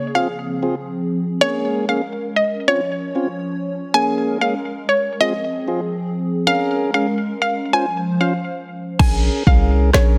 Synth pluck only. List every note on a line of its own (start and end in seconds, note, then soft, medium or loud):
0.15 0.60 F5 medium
1.41 1.64 C#5 loud
1.89 2.12 F5 medium
2.36 2.59 D#5 medium
2.68 3.13 C#5 medium
3.94 4.17 G#5 loud
4.41 4.64 F5 medium
4.89 5.12 C#5 medium
5.21 5.65 D#5 loud
6.47 6.70 F5 loud
6.94 7.17 F5 medium
7.42 7.65 F5 medium
7.73 7.85 G#5 medium
8.21 8.32 F5 medium
8.99 9.22 G#5 loud
9.47 9.70 F5 medium
9.94 10.17 C#5 medium